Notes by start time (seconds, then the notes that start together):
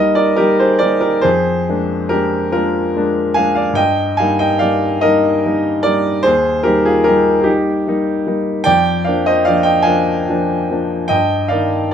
Already playing: G3 A#4 D#5
0.00 A#3 D#4
0.15 A#4 D5
0.36 G3 A#3 D#4 G4 A#4
0.59 G#4 C5
0.79 G3 A#3 A#4 D5
0.83 D#4
1.01 G4 A#4
1.21 F2 G#4 C5
1.69 G#3 A#3 D4
2.09 G#3 D4 G4 A#4
2.14 A#3
2.52 G#3 A#3 D4 F4 A#4
2.96 G#3 A#3 D4
3.34 G#3 A#3 D4 F5 G#5
3.55 D5 F5
3.73 G2 D#5 G5
4.17 G3 A#3 F5 G#5
4.21 D#4
4.39 D#5 G5
4.59 G3 A#3 D#4 D5 F5
5.01 G3 A#3 D#4 A#4 D#5
5.46 G3 A#3 D#4
5.83 G3 A#3 D#4 A#4 D5
6.23 D#2 G#4 C5
6.63 G3 A#3 D#4 G4 A#4
6.85 F4 G#4
7.04 G3 A#3 G4 A#4
7.08 D#4
7.41 G4 G#4
7.45 G3 A#3 D#4
7.87 G3 A#3 D#4
8.27 G3 A#3 D#4
8.64 F2 D5 G5
9.04 F3 A#3 D4 D5 F5
9.26 C5 D#5
9.45 F3 A#3 D4 D5 F5
9.63 D#5 G5
9.83 F3 A#3 F5 G#5
9.87 D4
10.29 F3 A#3 D4
10.70 F3 A#3 D4
11.08 G2 D#5 G5
11.48 D#3 A#3 D#4 D5 F5